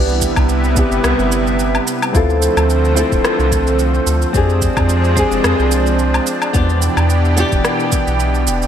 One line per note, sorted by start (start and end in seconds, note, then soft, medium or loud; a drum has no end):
0.00 0.28 C2 medium
0.00 2.12 C3 medium
0.00 2.12 G3 medium
0.00 0.73 B3 medium
0.00 2.12 B3 medium
0.00 2.77 B3 medium
0.00 0.26 D4 medium
0.00 0.74 D4 medium
0.00 0.74 E4 medium
0.00 1.72 E4 medium
0.00 2.12 E4 medium
0.00 0.75 G4 medium
0.00 0.41 D5 medium
0.09 shaker soft
0.22 kick medium
0.22 shaker medium
0.36 0.83 C2 loud
0.36 kick medium
0.36 low woodblock medium
0.36 shaker soft
0.49 shaker soft
0.64 shaker soft
0.75 2.11 B3 medium
0.75 2.11 D4 medium
0.75 2.12 E4 medium
0.75 2.12 G4 medium
0.75 kick loud
0.75 shaker medium
0.92 1.00 G1 medium
0.92 shaker soft
1.04 1.14 C2 medium
1.04 cross-stick medium
1.04 shaker soft
1.19 1.80 G1 medium
1.19 shaker soft
1.32 shaker medium
1.47 shaker soft
1.59 shaker soft
1.75 low woodblock medium
1.75 shaker soft
1.87 shaker medium
2.02 low woodblock medium
2.02 shaker soft
2.13 2.49 D2 medium
2.13 4.32 D3 medium
2.13 4.33 F3 medium
2.13 4.32 A3 medium
2.13 2.93 C4 medium
2.13 4.32 C4 medium
2.13 2.94 E4 medium
2.13 2.94 F4 medium
2.13 2.95 A4 medium
2.13 kick loud
2.13 shaker soft
2.30 shaker soft
2.42 shaker medium
2.57 3.04 D2 loud
2.57 low woodblock medium
2.57 shaker soft
2.70 shaker soft
2.85 shaker soft
2.95 4.31 C4 medium
2.95 4.31 E4 medium
2.95 4.32 F4 medium
2.95 4.33 A4 medium
2.95 shaker medium
3.12 3.20 D1 medium
3.12 kick medium
3.12 shaker soft
3.25 cross-stick medium
3.25 shaker soft
3.39 4.00 C2 loud
3.39 shaker soft
3.52 kick medium
3.52 shaker medium
3.67 shaker soft
3.79 shaker soft
3.94 shaker soft
4.07 4.26 D2 medium
4.07 shaker medium
4.22 shaker soft
4.33 4.69 F2 loud
4.33 6.52 F3 medium
4.33 6.53 G#3 medium
4.33 5.13 C4 medium
4.33 6.52 C4 medium
4.33 5.14 D4 medium
4.33 8.67 D4 medium
4.33 5.15 G4 medium
4.33 5.15 G#4 medium
4.33 kick loud
4.33 shaker soft
4.49 shaker soft
4.62 kick medium
4.62 shaker medium
4.77 5.24 F2 loud
4.77 kick loud
4.77 low woodblock medium
4.77 shaker soft
4.89 shaker soft
5.04 shaker soft
5.15 6.51 C4 medium
5.15 6.52 D4 medium
5.15 6.52 G4 medium
5.15 6.53 G#4 loud
5.15 kick loud
5.15 shaker medium
5.32 5.40 F1 medium
5.32 shaker soft
5.44 5.54 F2 medium
5.44 cross-stick medium
5.44 shaker soft
5.59 6.20 C2 medium
5.59 shaker soft
5.71 shaker medium
5.87 shaker soft
5.99 shaker soft
6.14 low woodblock medium
6.14 shaker soft
6.27 shaker medium
6.42 low woodblock medium
6.42 shaker soft
6.53 6.89 E2 medium
6.53 8.67 B2 medium
6.53 8.67 E3 medium
6.53 7.34 B3 medium
6.53 7.34 D4 medium
6.53 8.67 G4 medium
6.53 7.35 G4 medium
6.53 kick loud
6.53 shaker soft
6.70 shaker soft
6.82 shaker medium
6.97 7.44 E2 loud
6.97 low woodblock medium
6.97 shaker soft
7.10 shaker soft
7.25 shaker soft
7.36 8.67 B3 medium
7.36 8.67 D4 medium
7.36 8.67 G4 medium
7.36 shaker medium
7.52 7.61 E1 medium
7.52 kick medium
7.52 shaker soft
7.65 cross-stick medium
7.65 shaker soft
7.80 shaker soft
7.92 kick loud
7.92 shaker medium
8.07 8.48 B1 medium
8.07 shaker soft
8.20 shaker soft
8.35 shaker soft
8.47 8.66 E1 loud
8.47 shaker medium
8.62 shaker soft